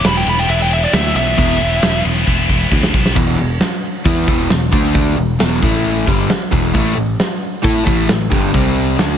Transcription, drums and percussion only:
0.04 snare loud
0.04 ride loud
0.27 ride medium
0.49 ride loud
0.71 ride medium
0.93 snare loud
0.93 ride loud
1.16 snare soft
1.16 ride medium
1.38 kick loud
1.38 ride loud
1.61 ride medium
1.83 snare loud
1.83 ride loud
2.05 ride medium
2.27 kick medium
2.50 kick medium
2.72 kick loud
2.83 snare medium
2.94 kick loud
3.06 snare medium
3.16 kick loud
3.16 crash loud
3.61 snare loud
3.61 open hi-hat medium
4.05 kick loud
4.05 open hi-hat medium
4.28 kick loud
4.50 snare loud
4.50 open hi-hat medium
4.73 kick loud
4.95 kick loud
4.95 open hi-hat medium
5.40 snare loud
5.40 open hi-hat medium
5.62 kick loud
5.85 open hi-hat medium
6.07 kick loud
6.30 snare loud
6.30 open hi-hat medium
6.52 kick loud
6.75 kick loud
6.75 open hi-hat medium
7.20 snare loud
7.20 open hi-hat medium
7.64 kick loud
7.64 open hi-hat medium
7.87 kick loud
8.09 snare loud
8.09 open hi-hat medium
8.32 kick loud
8.54 kick loud
8.54 open hi-hat medium
8.99 snare loud
8.99 open hi-hat medium

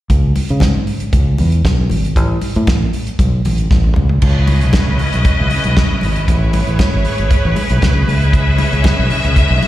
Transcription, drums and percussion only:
0.10 kick medium
0.10 closed hi-hat medium
0.36 open hi-hat medium
0.36 muted conga soft
0.49 closed hi-hat soft
0.60 kick loud
0.60 snare loud
0.60 closed hi-hat medium
0.60 high conga medium
0.87 open hi-hat medium
0.87 muted conga soft
1.00 closed hi-hat medium
1.13 kick loud
1.13 closed hi-hat medium
1.13 muted conga soft
1.38 open hi-hat medium
1.38 muted conga soft
1.52 closed hi-hat soft
1.65 kick loud
1.65 snare loud
1.65 closed hi-hat medium
1.65 high conga medium
1.90 open hi-hat medium
1.90 high conga medium
2.05 closed hi-hat soft
2.16 kick loud
2.16 closed hi-hat medium
2.41 open hi-hat medium
2.41 muted conga soft
2.55 closed hi-hat soft
2.67 kick loud
2.67 snare loud
2.67 closed hi-hat medium
2.67 high conga medium
2.93 open hi-hat medium
2.93 muted conga soft
3.07 closed hi-hat medium
3.19 kick loud
3.19 closed hi-hat medium
3.19 muted conga soft
3.45 open hi-hat medium
3.45 muted conga soft
3.45 low conga medium
3.58 closed hi-hat medium
3.71 kick loud
3.71 snare medium
3.71 high conga medium
3.84 high tom medium
3.96 mid tom medium
3.96 high conga medium
4.09 floor tom medium
4.22 kick medium
4.22 crash medium
4.47 open hi-hat medium
4.47 muted conga medium
4.61 closed hi-hat soft
4.73 kick loud
4.73 snare loud
4.73 closed hi-hat medium
4.73 high conga medium
4.99 open hi-hat medium
4.99 low conga medium
5.12 closed hi-hat soft
5.25 kick loud
5.25 closed hi-hat medium
5.25 muted conga soft
5.50 open hi-hat medium
5.50 muted conga soft
5.64 closed hi-hat medium
5.76 kick loud
5.76 snare loud
5.76 closed hi-hat medium
5.76 high conga medium
6.01 open hi-hat medium
6.01 high conga medium
6.16 closed hi-hat soft
6.28 kick loud
6.28 closed hi-hat medium
6.53 open hi-hat medium
6.53 muted conga medium
6.67 closed hi-hat soft
6.79 kick loud
6.79 snare loud
6.79 closed hi-hat medium
6.79 high conga medium
7.05 open hi-hat medium
7.18 closed hi-hat medium
7.30 kick loud
7.30 closed hi-hat medium
7.30 muted conga soft
7.56 open hi-hat medium
7.56 muted conga medium
7.69 closed hi-hat medium
7.82 kick loud
7.82 snare loud
7.82 closed hi-hat medium
7.82 high conga medium
8.08 open hi-hat medium
8.08 high conga medium
8.22 closed hi-hat soft
8.33 kick loud
8.33 closed hi-hat medium
8.58 open hi-hat medium
8.58 muted conga medium
8.73 closed hi-hat soft
8.84 kick loud
8.84 snare loud
8.84 closed hi-hat medium
8.84 high conga medium
9.10 open hi-hat medium
9.10 muted conga soft
9.10 low conga medium
9.24 closed hi-hat medium
9.36 kick loud
9.36 closed hi-hat medium
9.36 muted conga soft
9.62 open hi-hat medium
9.62 muted conga soft

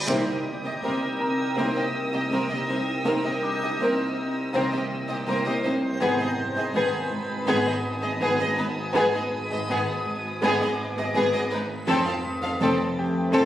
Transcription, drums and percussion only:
0.08 taiko medium
0.82 taiko medium
2.31 taiko medium
3.05 taiko medium
3.79 taiko medium
5.27 taiko medium
6.01 taiko medium
6.38 taiko low-mid medium
6.56 taiko low-mid medium
6.74 taiko medium
7.11 taiko low-mid medium
7.65 taiko low-mid soft
8.02 taiko low-mid medium
8.21 taiko medium
8.39 taiko low-mid soft
8.94 taiko medium
9.31 taiko low-mid medium
9.50 taiko low-mid medium
9.68 taiko medium
10.05 taiko low-mid medium
10.60 taiko low-mid medium
10.97 taiko low-mid medium
11.15 taiko medium
11.33 taiko low-mid soft
11.87 taiko medium
12.24 taiko low-mid medium
12.42 taiko low-mid medium
12.60 taiko medium
12.97 taiko low-mid medium

